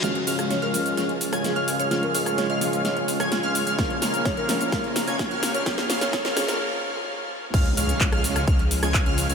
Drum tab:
CC |----------------|----------------|----------------|----------------|
HH |xxoxxxoxxxoxxxox|xxoxxxoxxxoxxxox|xxoxxxoxxxoxxxox|xxoxxxox--------|
SH |x-xxx-xxx-xxx-xx|x-xxx-xxx-xxx-xx|x-xxx-xxx-xxx-xx|x-xxx-xx--------|
CP |----------------|----------------|----------------|----------------|
SD |o--ro---o--ro---|o--ro---o--ro---|o-o-o-o-o-o-o-o-|oooooooo--------|
BD |----------------|----------------|o---o---o---o---|o---o-----------|

CC |x---------------|
HH |xxoxxxoxxxoxxxox|
SH |x-xxx-xxx-xxx-xx|
CP |----x-------x---|
SD |-----r-r---r----|
BD |o---o---o---o---|